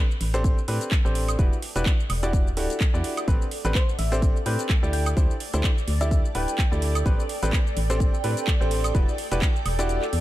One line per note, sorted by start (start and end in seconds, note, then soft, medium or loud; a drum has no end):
0.00 10.21 A4 medium
0.00 10.21 D5 medium
0.11 shaker soft
0.21 0.54 A1 loud
0.21 open hi-hat loud
0.34 0.57 C4 medium
0.34 0.57 D4 medium
0.34 0.57 G4 medium
0.34 0.57 A4 medium
0.34 0.57 C5 loud
0.34 closed hi-hat medium
0.34 shaker medium
0.44 kick loud
0.44 closed hi-hat medium
0.44 shaker medium
0.58 shaker soft
0.68 0.79 A2 medium
0.68 0.91 C4 medium
0.68 0.91 D4 medium
0.68 0.91 G4 medium
0.68 0.91 A4 medium
0.68 0.91 B4 medium
0.68 open hi-hat loud
0.81 closed hi-hat medium
0.81 shaker medium
0.91 kick loud
0.91 clap loud
0.91 closed hi-hat medium
0.91 shaker medium
1.05 1.36 A1 medium
1.05 1.36 C4 medium
1.05 1.36 D4 medium
1.05 1.36 G4 medium
1.05 1.36 A4 medium
1.05 1.36 C5 medium
1.05 shaker soft
1.15 open hi-hat loud
1.28 closed hi-hat medium
1.28 high woodblock medium
1.28 shaker medium
1.39 1.50 E1 loud
1.39 1.54 D4 medium
1.39 1.54 E4 medium
1.39 1.54 F#4 medium
1.39 1.54 G4 medium
1.39 1.54 B4 medium
1.39 kick loud
1.39 closed hi-hat medium
1.39 shaker medium
1.53 shaker soft
1.62 open hi-hat loud
1.76 1.84 E1 loud
1.76 1.89 D4 medium
1.76 1.89 E4 medium
1.76 1.89 F#4 medium
1.76 1.89 G4 medium
1.76 1.89 B4 loud
1.76 closed hi-hat medium
1.76 shaker medium
1.86 kick loud
1.86 clap loud
1.86 closed hi-hat medium
1.86 shaker medium
2.00 shaker soft
2.10 2.58 E1 loud
2.10 open hi-hat loud
2.10 high woodblock medium
2.23 2.46 D4 medium
2.23 2.46 E4 medium
2.23 2.46 F#4 medium
2.23 2.46 G4 medium
2.23 2.46 D5 loud
2.23 closed hi-hat medium
2.23 shaker medium
2.33 kick loud
2.33 closed hi-hat medium
2.33 shaker medium
2.47 shaker soft
2.57 2.68 D1 loud
2.57 2.80 D4 medium
2.57 2.80 E4 medium
2.57 2.80 F#4 medium
2.57 2.80 G4 medium
2.57 2.80 A4 medium
2.57 open hi-hat loud
2.70 closed hi-hat medium
2.70 shaker medium
2.80 kick loud
2.80 clap loud
2.80 closed hi-hat medium
2.80 shaker medium
2.94 3.02 E2 loud
2.94 3.25 D4 medium
2.94 3.25 E4 medium
2.94 3.25 F#4 medium
2.94 3.25 G4 medium
2.94 3.25 D5 medium
2.94 shaker soft
3.04 open hi-hat loud
3.17 closed hi-hat medium
3.17 high woodblock medium
3.17 shaker medium
3.28 3.39 A1 loud
3.28 3.43 C4 medium
3.28 3.43 D4 medium
3.28 3.43 G4 medium
3.28 3.43 A4 medium
3.28 3.43 B4 medium
3.28 kick loud
3.28 closed hi-hat soft
3.28 shaker medium
3.42 shaker soft
3.51 open hi-hat loud
3.65 3.73 A1 loud
3.65 3.78 C4 medium
3.65 3.78 D4 medium
3.65 3.78 G4 medium
3.65 3.78 A4 medium
3.65 3.78 B4 loud
3.65 closed hi-hat medium
3.65 shaker medium
3.75 3.90 C5 loud
3.75 kick loud
3.75 clap loud
3.75 closed hi-hat medium
3.75 shaker medium
3.89 shaker soft
3.99 4.32 A1 loud
3.99 4.14 E5 medium
3.99 open hi-hat loud
4.03 10.21 G5 medium
4.12 4.35 C4 medium
4.12 4.35 D4 medium
4.12 4.35 G4 medium
4.12 4.35 A4 medium
4.12 4.35 C5 loud
4.12 closed hi-hat medium
4.12 shaker medium
4.22 kick loud
4.22 closed hi-hat medium
4.22 shaker medium
4.36 shaker soft
4.46 4.57 A2 medium
4.46 4.69 C4 medium
4.46 4.69 D4 medium
4.46 4.69 G4 medium
4.46 4.69 A4 medium
4.46 4.69 B4 medium
4.46 4.61 G5 loud
4.46 open hi-hat loud
4.59 closed hi-hat medium
4.59 shaker medium
4.69 kick loud
4.69 clap loud
4.69 closed hi-hat medium
4.69 shaker medium
4.83 5.14 D2 medium
4.83 5.14 D4 medium
4.83 5.14 E4 medium
4.83 5.14 G4 medium
4.83 5.14 A4 medium
4.83 5.14 D5 medium
4.83 shaker soft
4.93 5.08 G5 loud
4.93 open hi-hat loud
5.06 closed hi-hat medium
5.06 high woodblock medium
5.06 shaker medium
5.17 5.28 D2 loud
5.17 5.32 D4 medium
5.17 5.32 E4 medium
5.17 5.32 G4 medium
5.17 5.32 A4 medium
5.17 5.32 C5 medium
5.17 kick loud
5.17 closed hi-hat medium
5.17 shaker medium
5.31 shaker soft
5.40 open hi-hat loud
5.54 5.62 D2 loud
5.54 5.67 D4 medium
5.54 5.67 E4 medium
5.54 5.67 G4 medium
5.54 5.67 A4 medium
5.54 5.67 C5 medium
5.54 closed hi-hat medium
5.54 shaker medium
5.64 kick loud
5.64 clap loud
5.64 closed hi-hat medium
5.64 shaker medium
5.78 shaker soft
5.88 6.21 D2 loud
5.88 open hi-hat loud
6.01 6.24 D4 medium
6.01 6.24 E4 medium
6.01 6.24 G4 medium
6.01 6.24 A4 medium
6.01 6.24 D5 loud
6.01 6.07 E5 loud
6.01 closed hi-hat medium
6.01 shaker medium
6.11 6.20 E5 medium
6.11 kick loud
6.11 closed hi-hat medium
6.11 shaker medium
6.25 shaker soft
6.35 6.46 D1 medium
6.35 6.58 D4 medium
6.35 6.58 E4 medium
6.35 6.58 G4 medium
6.35 6.58 A4 medium
6.35 6.58 B4 medium
6.35 6.72 G5 loud
6.35 open hi-hat loud
6.48 closed hi-hat medium
6.48 shaker medium
6.58 kick loud
6.58 clap loud
6.58 closed hi-hat medium
6.58 shaker medium
6.72 7.03 D2 medium
6.72 7.03 D4 medium
6.72 7.03 E4 medium
6.72 7.03 G4 medium
6.72 7.03 A4 medium
6.72 7.03 D5 medium
6.72 shaker soft
6.82 open hi-hat loud
6.95 closed hi-hat medium
6.95 high woodblock medium
6.95 shaker medium
7.06 7.17 A1 loud
7.06 7.21 C4 medium
7.06 7.21 D4 medium
7.06 7.21 G4 medium
7.06 7.21 A4 medium
7.06 7.21 B4 medium
7.06 kick loud
7.06 closed hi-hat medium
7.06 shaker medium
7.20 shaker soft
7.29 open hi-hat loud
7.43 7.51 A1 loud
7.43 7.56 C4 medium
7.43 7.56 D4 medium
7.43 7.56 G4 medium
7.43 7.56 A4 medium
7.43 7.56 B4 medium
7.43 closed hi-hat medium
7.43 shaker medium
7.53 kick loud
7.53 clap loud
7.53 closed hi-hat medium
7.53 shaker medium
7.67 shaker soft
7.77 8.10 A1 loud
7.77 open hi-hat loud
7.90 8.13 C4 loud
7.90 8.13 D4 medium
7.90 8.13 G4 medium
7.90 8.13 A4 medium
7.90 8.13 C5 loud
7.90 closed hi-hat medium
7.90 shaker medium
8.00 kick loud
8.00 closed hi-hat medium
8.00 shaker medium
8.14 shaker soft
8.24 8.35 A2 medium
8.24 8.47 C4 medium
8.24 8.47 D4 medium
8.24 8.47 G4 medium
8.24 8.47 A4 medium
8.24 8.47 B4 medium
8.24 open hi-hat loud
8.37 closed hi-hat medium
8.37 shaker medium
8.47 kick loud
8.47 clap loud
8.47 closed hi-hat medium
8.47 shaker medium
8.61 8.92 A1 medium
8.61 8.92 C4 medium
8.61 8.92 D4 medium
8.61 8.92 G4 medium
8.61 8.92 A4 medium
8.61 8.92 C5 loud
8.61 shaker soft
8.71 open hi-hat loud
8.84 closed hi-hat medium
8.84 high woodblock medium
8.84 shaker medium
8.95 9.06 E1 loud
8.95 9.10 D4 medium
8.95 9.10 E4 medium
8.95 9.10 F#4 medium
8.95 9.10 G4 medium
8.95 9.10 B4 medium
8.95 kick loud
8.95 closed hi-hat medium
8.95 shaker medium
9.09 shaker soft
9.18 open hi-hat loud
9.31 9.40 E1 loud
9.31 9.45 D4 medium
9.31 9.45 E4 medium
9.31 9.45 F#4 medium
9.31 9.45 G4 medium
9.31 9.45 B4 loud
9.31 closed hi-hat medium
9.31 shaker medium
9.42 kick loud
9.42 clap loud
9.42 closed hi-hat medium
9.42 shaker medium
9.56 shaker soft
9.66 9.99 E1 loud
9.66 open hi-hat loud
9.66 high woodblock medium
9.79 10.02 D4 loud
9.79 10.02 E4 medium
9.79 10.02 F#4 medium
9.79 10.02 G4 medium
9.79 10.02 D5 loud
9.79 closed hi-hat medium
9.79 shaker medium
9.89 closed hi-hat medium
9.89 shaker medium
10.02 clap soft
10.02 shaker soft
10.13 10.21 E2 medium
10.13 open hi-hat loud